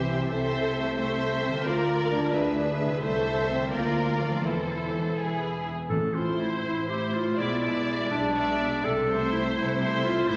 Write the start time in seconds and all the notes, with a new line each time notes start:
Already playing: C2 C3 E3 C4 E4 G4 C5 E5
0.12 C3
0.17 C4
0.22 E4
0.26 A4
0.30 C2 C3 C4 A4 C5 E5
0.76 A3
0.97 A3 A4 C5 E5
1.42 C4
1.48 D3
1.52 A#3
1.57 F4
1.61 A#4
1.66 D2 F4 A#4 D5
2.11 D4
2.15 D3
2.20 G#3
2.24 E4
2.29 B4
2.34 D2 D4 G#4 E5
2.81 C3 E4
2.89 A3
2.94 E4
2.98 C5
3.03 C2 A3 A4 E5
3.50 C4
3.55 D3
3.60 D4
3.64 F4
3.69 A#4
3.73 D2 A#3 F4 D5
4.20 F3
4.26 E3
4.31 C4
4.35 E4
4.40 A4
4.44 E1 E2 E3 E4 C5
4.99 E3
5.03 B3
5.07 E4
5.12 G#4
5.16 E1 E2 E4 G#4 B4
5.90 A1 A2 A4
6.14 C4 E4 F4 C5
6.40 E4 A4
6.65 A1 A2 E4 C5
6.88 E4 G4 C5 E5
7.14 F4 C5
7.38 B1 B2 G#3 E4 D5 E5
7.61 G#3 D4 D5 E5
7.87 G#4
8.11 B1 B2 D4 D5
8.35 G#3 D5 E5
8.60 D5
8.83 C2 C3 A4
9.08 A3 C4 C5 E5
9.32 E4 A4
9.56 C2 C3 E4 C5
9.80 A3 C5 E5
10.04 F4 C5
10.28 A1 A2 A3 E4 C5 E5